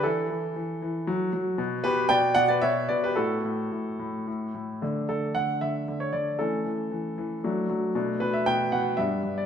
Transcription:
<<
  \new Staff \with { instrumentName = "Grand piano" } { \time 3/4 \key d \major \tempo 4 = 116 << { <e' a'>2. | r8 <g' b'>8 <d'' g''>8 <d'' fis''>16 <b' d''>16 <cis'' e''>8 <b' d''>16 <g' b'>16 | <fis' a'>2~ <fis' a'>8 r8 | r8 a'8 fis''8 e''8. cis''16 d''8 |
a'2. | r8 b'16 e''16 g''8 fis''8 e''8. d''16 | } \\ { r2. | r2. | r2. | <a d'>2. |
<a cis'>2 <a d'>4 | <a d'>2 <b d'>4 | } >> }
  \new Staff \with { instrumentName = "Grand piano" } { \clef bass \time 3/4 \key d \major e8 e8 e8 e8 fis8 fis8 | b,8 b,8 b,8 b,8 b,8 b,8 | a,8 a,8 a,8 a,8 a,8 a,8 | d8 d8 d8 d8 d8 d8 |
e8 e8 e8 e8 fis8 fis8 | b,8 b,8 b,8 b,8 g,8 g,8 | }
>>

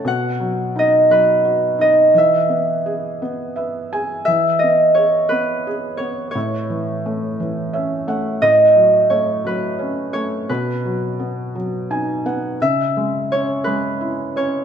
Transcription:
<<
  \new Staff \with { instrumentName = "Harp" } { \time 6/8 \key e \major \tempo 4. = 57 fis''4 dis''8 b'4 dis''8 | e''2~ e''8 r8 | e''8 dis''8 cis''8 b'4 cis''8 | cis''2 r4 |
dis''4 cis''8 b'4 cis''8 | b'2 r4 | e''4 cis''8 b'4 cis''8 | }
  \new Staff \with { instrumentName = "Felt piano" } { \time 6/8 \key e \major b,8 fis8 dis'8 fis8 fis'8 dis'8 | e8 b8 gis'8 b8 <b' e''>8 <gis' gis''>8 | e8 b8 gis'8 b8 gis'8 b8 | a,8 e8 a8 e8 <cis' e''>8 <a fis''>8 |
a,8 fis8 a8 fis8 cis'8 a8 | b,8 fis8 b8 fis8 <dis' gis''>8 <b fis''>8 | cis8 gis8 cis'8 gis8 e'8 cis'8 | }
>>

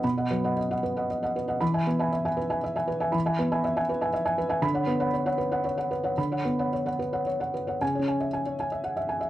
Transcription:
<<
  \new Staff \with { instrumentName = "Felt piano" } { \time 3/4 \key b \dorian \tempo 4 = 117 << { r2. | b''8 r2 r8 | r2. | b''8 r2 r8 |
r2. | gis''8 r2 r8 | } \\ { b''16 <dis'' fis''>16 b'16 <dis'' fis''>16 dis''16 <dis'' fis''>16 b'16 <dis'' fis''>16 dis''16 <dis'' fis''>16 b'16 <dis'' fis''>16 | r16 <e'' gis''>16 b'16 <e'' gis''>16 e''16 <e'' gis''>16 b'16 <e'' gis''>16 e''16 <e'' gis''>16 b'16 <e'' gis''>16 | b''16 <e'' gis''>16 b'16 <e'' gis''>16 e''16 <e'' gis''>16 b'16 <e'' gis''>16 e''16 <e'' gis''>16 b'16 <e'' gis''>16 | r16 <cis'' fis''>16 b'16 <cis'' fis''>16 cis''16 <cis'' fis''>16 b'16 <cis'' fis''>16 cis''16 <cis'' fis''>16 b'16 <cis'' fis''>16 |
b''16 <cis'' fis''>16 b'16 <cis'' fis''>16 cis''16 <cis'' fis''>16 b'16 <cis'' fis''>16 cis''16 <cis'' fis''>16 b'16 <cis'' fis''>16 | r16 cis''16 gis''16 e''16 gis''16 cis''16 gis''16 e''16 fis''16 e''16 gis''16 e''16 | } >> }
  \new Staff \with { instrumentName = "Felt piano" } { \clef bass \time 3/4 \key b \dorian b,8 fis4 r4. | e8 b4 r4. | e8 b4 r4. | d8 b4 r4. |
d8 b4 r4. | \tuplet 3/2 { cis8 cis'4 } r2 | }
>>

